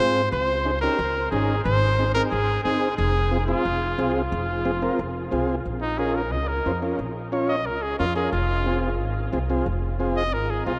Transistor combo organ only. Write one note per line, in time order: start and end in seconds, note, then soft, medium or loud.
0.00 0.22 C4 medium
0.00 0.22 F4 medium
0.00 0.22 G#4 medium
0.65 0.71 C#4 medium
0.65 0.71 D#4 medium
0.65 0.71 G#4 medium
0.82 1.00 C#4 medium
0.82 1.00 D#4 medium
0.82 1.00 G4 medium
1.32 1.55 C#4 medium
1.32 1.56 D#4 medium
1.32 1.56 G#4 medium
1.99 2.05 C4 medium
1.99 2.05 D#4 medium
1.99 2.05 G#4 medium
2.16 2.33 C4 medium
2.16 2.33 D#4 medium
2.16 2.33 G#4 medium
2.65 2.88 C4 medium
2.65 2.89 D#4 medium
2.65 2.89 G#4 medium
3.31 3.37 C4 medium
3.31 3.38 F4 medium
3.31 3.38 G#4 medium
3.48 3.66 C4 medium
3.48 3.66 F4 medium
3.48 3.66 G#4 medium
3.98 4.22 C4 medium
3.98 4.22 F4 medium
3.98 4.22 G#4 loud
4.65 4.71 C4 medium
4.65 4.71 F4 medium
4.65 4.72 G#4 medium
4.82 5.00 C4 medium
4.82 5.00 F4 medium
4.82 5.00 A#4 medium
5.31 5.55 C4 medium
5.31 5.55 F4 medium
5.31 5.56 G#4 medium
5.98 6.22 C#4 medium
5.98 6.22 F4 medium
5.98 6.22 A#4 medium
6.66 6.72 C#4 medium
6.66 6.72 F4 medium
6.66 6.72 C5 medium
6.82 7.00 C#4 medium
6.82 7.00 F4 medium
6.82 7.00 A#4 medium
7.32 7.56 C#4 medium
7.32 7.56 F4 medium
7.32 7.56 C#5 medium
7.99 8.05 C#4 medium
7.99 8.05 F4 medium
7.99 8.06 A#4 medium
8.16 8.33 C#4 medium
8.16 8.33 F4 medium
8.16 8.33 A#4 medium
8.66 8.89 C4 medium
8.66 8.90 F4 medium
8.66 8.90 G#4 medium
9.33 9.39 C4 medium
9.33 9.39 F4 medium
9.33 9.39 G#4 medium
9.50 9.67 C4 medium
9.50 9.68 F4 medium
9.50 9.68 G#4 medium
9.99 10.23 C4 medium
9.99 10.23 F4 medium
9.99 10.24 G#4 medium
10.66 10.72 C4 medium
10.66 10.73 F4 medium
10.66 10.73 G#4 medium